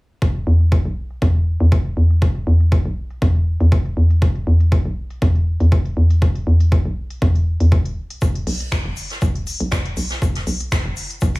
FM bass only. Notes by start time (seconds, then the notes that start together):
0.47 E2
0.85 B1
1.22 E2
1.60 E2
1.97 E2
2.47 E2
2.85 B1
3.22 E2
3.60 E2
3.97 E2
4.47 E2
4.85 B1
5.22 E2
5.60 E2
5.97 E2
6.47 E2
6.85 B1
7.22 E2
7.60 E2
7.97 B1
8.47 B1
8.85 F#1
9.22 B1
9.60 B1
9.97 B1
10.47 B1
10.85 F#1
11.22 B1